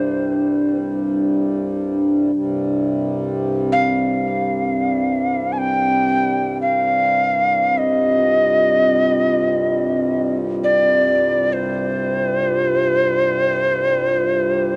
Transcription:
0.00 2.31 C2 medium
0.00 2.32 G2 medium
0.00 2.83 D4 soft
0.00 1.16 C5 medium
2.33 14.76 C2 medium
2.33 14.76 G2 medium
2.81 11.50 C4 medium
3.73 5.54 F5 medium
5.52 5.60 G#5 medium
5.58 6.60 G5 loud
6.62 7.79 F5 medium
7.78 10.34 D#5 medium
7.92 14.76 F4 soft
10.64 11.54 D5 medium
11.53 14.76 C5 medium

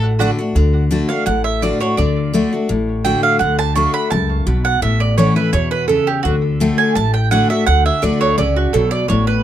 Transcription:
0.00 0.29 A1 medium
0.00 0.53 A2 medium
0.19 0.38 D3 medium
0.19 0.29 A3 medium
0.19 0.39 A3 medium
0.19 0.39 D4 medium
0.19 0.29 F#4 loud
0.19 0.37 F#4 medium
0.19 0.29 D5 medium
0.19 0.30 F#5 loud
0.39 0.56 D4 soft
0.39 0.55 F#4 medium
0.55 1.00 D2 medium
0.55 0.89 D3 medium
0.91 1.09 D3 medium
0.91 1.09 A3 medium
0.91 1.09 D4 medium
0.91 1.08 F#4 medium
1.09 1.27 D4 soft
1.09 1.26 F#4 medium
1.09 1.25 F5 medium
1.26 1.71 A1 medium
1.26 1.94 A2 medium
1.26 1.44 F#5 medium
1.44 1.61 E5 medium
1.62 1.80 D3 medium
1.62 1.81 A3 medium
1.62 1.81 D4 loud
1.62 1.80 F#4 medium
1.62 1.80 D5 medium
1.81 1.98 D4 medium
1.81 1.97 F#4 medium
1.81 1.97 C#5 medium
1.97 2.42 D2 medium
1.97 2.32 D3 medium
1.97 2.48 D5 medium
2.33 2.52 D3 medium
2.33 2.52 A3 medium
2.33 2.52 D4 medium
2.33 2.51 F#4 medium
2.53 2.70 D4 soft
2.53 2.69 F#4 medium
2.69 3.14 A1 medium
2.69 3.37 A2 medium
3.05 3.39 D3 medium
3.05 3.39 A3 medium
3.05 3.39 D4 medium
3.05 3.39 F#4 medium
3.05 3.23 G5 medium
3.23 3.39 F5 medium
3.39 3.85 D2 medium
3.39 3.74 D3 medium
3.39 3.58 F#5 medium
3.59 3.75 A5 loud
3.75 4.10 D3 medium
3.75 4.10 A3 loud
3.75 4.10 D4 medium
3.75 4.11 F#4 loud
3.75 3.93 C#6 medium
3.94 4.10 B5 loud
4.10 4.42 C#2 medium
4.10 4.45 F#2 medium
4.10 4.61 A5 medium
4.46 4.77 B1 medium
4.46 4.81 B2 medium
4.65 4.82 F#5 loud
4.82 5.27 A1 medium
4.82 5.50 A2 medium
4.82 5.01 E5 medium
5.00 5.17 D5 medium
5.18 5.36 E3 medium
5.18 5.36 A3 medium
5.18 5.36 C#4 medium
5.18 5.35 E4 medium
5.18 5.36 C#5 medium
5.36 5.53 C#4 soft
5.36 5.53 E4 medium
5.36 5.52 B4 medium
5.53 5.98 E2 medium
5.53 5.87 B2 medium
5.53 5.71 C#5 medium
5.71 5.87 B4 medium
5.88 6.23 C#3 medium
5.88 6.07 A4 medium
6.07 6.22 G4 medium
6.23 6.69 D2 medium
6.23 6.59 D3 medium
6.23 6.35 F#4 medium
6.60 6.94 D3 medium
6.60 6.95 A3 loud
6.60 6.95 D4 medium
6.60 6.95 F#4 loud
6.78 6.95 G#5 loud
6.95 7.40 A1 medium
6.95 7.64 A2 medium
6.95 7.13 A5 loud
7.14 7.31 G5 medium
7.31 7.49 D3 medium
7.31 7.50 A3 medium
7.31 7.50 D4 medium
7.31 7.49 F#4 loud
7.31 7.49 F#5 loud
7.50 7.67 D4 soft
7.50 7.66 F#4 medium
7.50 7.66 E5 medium
7.67 7.89 D2 medium
7.67 7.85 F#5 loud
7.86 8.02 E5 medium
8.02 8.33 D2 medium
8.02 8.36 D3 medium
8.02 8.37 A3 medium
8.02 8.37 D4 medium
8.02 8.37 F#4 loud
8.02 8.20 D5 medium
8.21 8.37 C#5 loud
8.38 8.68 C#2 medium
8.38 8.72 C#3 medium
8.38 8.56 D5 medium
8.56 8.73 F#4 medium
8.73 9.04 B1 medium
8.73 9.08 B2 medium
8.73 8.90 A4 medium
8.91 9.08 D5 loud
9.08 9.43 A1 medium
9.08 9.43 A2 medium
9.08 9.27 C#5 medium
9.27 9.43 B4 medium

